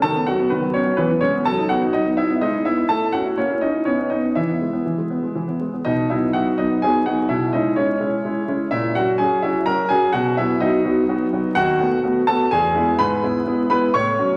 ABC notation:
X:1
M:3/4
L:1/16
Q:1/4=126
K:E
V:1 name="Grand piano"
[Aa]2 [Ff]2 [B,B]2 [Cc]2 [B,B]2 [Cc]2 | [Aa]2 [Ff]2 [Dd]2 [Ee]2 [Dd]2 [Ee]2 | [Aa]2 [Ff]2 [Cc]2 [Dd]2 [Cc]2 [Dd]2 | [Ee]8- [Ee]2 z2 |
[K:B] [Dd]2 [Ee]2 [Ff]2 [Dd]2 [Gg]2 [Ff]2 | [Ee]2 [Dd]2 [Cc]8 | [Ee]2 [Ff]2 [Gg]2 [Ee]2 [Aa]2 [Gg]2 | [Ff]2 [Ee]2 [Dd]8 |
[K:E] [Ff]6 [Aa]2 [Gg]4 | [Bb]6 [Bb]2 [cc']4 |]
V:2 name="Grand piano"
D, B, F, B, D, F, B, F, E, B, G, B, | F, D B, D F, B, D B, G, E B, E | A, E C E ^A, E C E B, B, B, B, | E, B, G, B, E, G, B, G, E, B, G, B, |
[K:B] B,,2 [F,B,D]2 [F,B,D]2 [F,B,]2 [F,B,D]2 [F,B,D]2 | B,,2 [G,CE]2 [G,E]2 [G,CE]2 [G,CE]2 [G,CE]2 | A,,2 [F,C]2 [F,CF]2 [F,CF]2 [F,CF]2 [F,CF]2 | B,,2 [F,B,F]2 [F,B,F]2 [F,B,F]2 [F,B,F]2 [F,B,F]2 |
[K:E] D,,2 [A,B,F]2 [A,B,F]2 [A,B,F]2 E,,2 [G,B,E]2 | G,,2 [G,B,E]2 [G,B,E]2 [G,B,E]2 A,,2 [F,C]2 |]